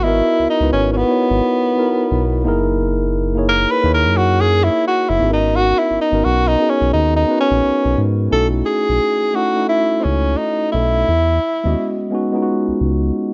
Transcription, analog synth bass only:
Already playing: G#1
0.39 C#2
0.60 C#2
0.73 G#1
1.30 G#1
2.11 B1
2.46 F#1
3.84 D#2
4.05 F#2
5.10 F#1
5.22 G#1
5.90 G#1
6.12 G#1
6.26 B1
6.81 B1
6.94 D#2
7.51 A#1
7.64 B1
7.85 B1
7.98 G#2
8.32 B1
8.89 B1
10.05 C#2
10.74 B1
11.08 E2
11.65 D#2
12.68 C#2
12.81 C#2

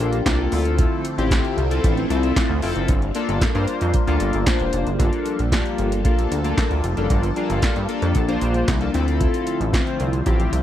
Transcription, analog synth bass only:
0.00 A#1
0.26 C2
0.52 D2
1.18 A1
1.57 C2
1.84 A1
2.10 C2
2.50 D2
2.63 F1
2.76 F#1
2.89 G1
3.29 G1
3.41 G2
3.55 G2
3.82 F2
4.08 D2
4.21 G1
4.34 G1
4.61 E1
4.74 F1
4.87 F#1
5.00 G1
5.40 A#1
5.79 G1
6.05 A#1
6.32 D2
6.71 D2
6.84 F1
6.97 F#1
7.10 G1
7.50 G1
7.62 G2
7.76 G2
8.02 F2
8.15 A#1
8.42 A#1
8.68 C2
8.95 D2
9.61 A1
10.00 C2
10.26 A1
10.53 C2

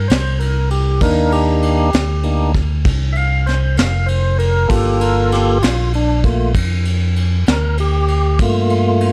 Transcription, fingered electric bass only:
0.10 C2
1.02 D#2
1.94 D2
2.85 C2
3.78 F1
4.70 G1
5.63 A#1
6.55 F2
7.48 D2
8.40 G2

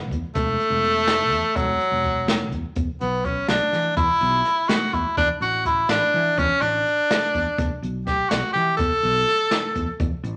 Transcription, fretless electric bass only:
Already playing: E1
0.12 E2
0.35 E1
0.70 E1
1.31 E2
1.56 E1
1.91 E1
2.52 E2
2.77 E2
3.01 B1
3.49 B1
3.73 E3
3.97 E2
4.21 B1
4.93 E2
5.17 E2
5.41 A1
5.89 A1
6.14 E3
6.37 E2
6.61 A1
7.35 E2
7.58 E2
7.82 B1
8.31 B1
8.55 E3
8.79 E2
9.03 B1
9.76 E2
10.00 E2
10.23 A1

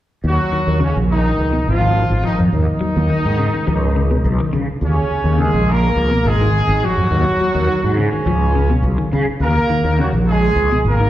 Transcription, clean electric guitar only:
0.52 D#3
0.80 C#3
1.53 B2
1.81 D#3
2.24 F3
2.81 F#3
3.10 D#3
3.39 C#3
3.54 D#3
3.67 F3
3.96 C#3
4.11 B2
4.40 D#3
4.53 C#3
5.39 C#3
6.11 B2
6.41 D#3
6.83 F3
7.41 F#3
7.69 D#3
7.98 C#3
8.13 D#3
8.27 F3
8.55 C#3
8.70 B2
8.98 D#3
9.13 C#3
9.70 D#3
9.99 C#3
10.72 B2
11.00 D#3

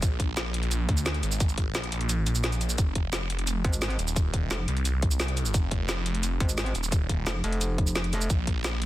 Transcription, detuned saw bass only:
0.02 A#1
0.89 D2
1.23 G#1
1.75 A#1
1.92 A#1
2.27 A#1
2.78 F1
3.99 D#1
4.68 C2
5.20 C2
5.54 F1
6.75 D#1
8.30 A#1

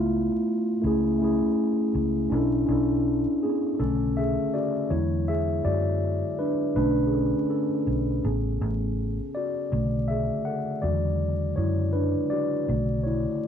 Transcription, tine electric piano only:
Already playing: A3 B3 E4 F4
0.81 A3 C#4 E4
0.87 G#4
1.19 A3 C#4 E4
1.24 G#4
2.30 C#4 D4 E4
2.35 A4
2.67 C#4 D4 E4
2.72 A4
3.43 B3 G#4
3.79 C#3 D3 A3 C#4 A4
4.17 G#4 E5
4.54 F#4 D5
4.90 D3 F#3 G#3 B3 E4 C#5
5.28 G#4 E5
5.65 F#4 D5
6.39 D4 B4
6.76 D3 A3 C#4 D4 B4
7.07 G#4
7.13 C#4 A4
7.50 C#4 A4
8.24 C#3 B3 G#4
9.35 F#4 D5
9.72 C#3 D3 A3
10.08 G#4 E5
10.45 A4 F#5
10.82 C#3 D3 F#3 G#3 F#4 D5
11.56 E4 C#5
11.93 D4 B4
12.30 F#4 D5
12.68 C#3 D3 A3
13.03 E4 C#5

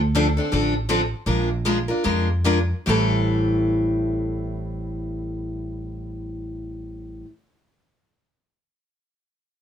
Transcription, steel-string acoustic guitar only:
0.15 D3 F3 C4 D4 A4
0.37 C4 D4 A4
0.52 D3 F3 C4 D4 A4
0.89 D3 F3 C4 D4 A4
1.26 F3 G#3 D4 F4 A#4
1.65 F3 G#3 D4 F4 A#4
1.88 D4 F4 A#4
2.04 F3 G#3 D4 F4 A#4
2.44 F3 G#3 D4 F4 A#4
2.86 A2 E3 G3 C4 E4 A4

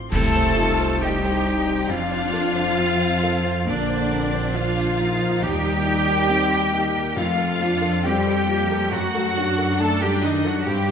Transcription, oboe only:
0.13 A4
1.02 G4
1.89 F4
3.70 D4
4.57 F4
5.43 G4
7.18 F4
8.06 G4
8.93 F#4
9.82 A4
10.03 G4
10.25 D#4
10.47 F#4
10.69 G4

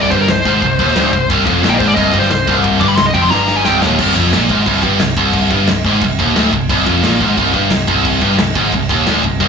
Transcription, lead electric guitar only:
0.02 D5
0.11 C5
0.21 A#4
0.30 C5
1.70 G5
1.74 D#5
1.79 C5
1.87 D5
1.95 D#5
2.19 C5
2.80 D6
2.88 B5
2.97 C6
3.06 D#5
3.14 G5
3.22 C6
3.30 A#5
3.56 G#5
3.66 G5

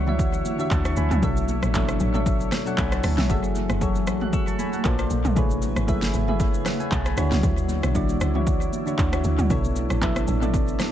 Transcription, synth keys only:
Already playing: D3 D4 F#4 C#5 E5 F#5
0.07 E3 D4 F#4 C#5 E5
0.58 D3 D4 F#4 C#5 E5
0.71 F#5 A5
0.85 A5 C#6
0.97 G#5 B5
1.11 F#5 A5
1.22 B2 F#3 D4 A4 C#5 E5
1.74 B2 F#3 D4 A4 C#5 E5
2.14 B2 F#3 D4 A4 C#5 E5
2.65 B2 F#3 D4 A4 C#5 F#5
2.78 G#5 B5
2.92 F#5 A5
3.18 C#5 E5
3.29 F#3 F#4 G#4 A4 E5
3.80 F#3 F#4 G#4 A4 C#5
4.21 F#6
4.33 C#6 E6
4.47 A5 C#6
4.59 G#5 B5
4.73 F#5 A5
4.84 A#3 F4 A4 C5 D5
4.98 A#3 F4 A4 C5 D5
5.35 A3 E4 G#4 B4 C#5
5.87 A3 E4 G#4 B4 E5
6.27 A3 E4 G#4 B4 E5
6.66 F#5
6.80 E5 G#5
6.92 F#5 A5
7.06 G#5 B5
7.17 D3 D4 E4 F#4 C#5
7.94 D3 D4 E4 F#4 D5
8.34 E3 D4 E4 F#4 C#5
8.86 D3 D4 E4 F#4 C#5
9.12 D3 D4 E4 F#4 C#5
9.49 B2 B3 D4 E4 A4 C#5
10.01 B2 B3 D4 E4 A4 E5
10.41 B2 B3 D4 E4 A4 D5

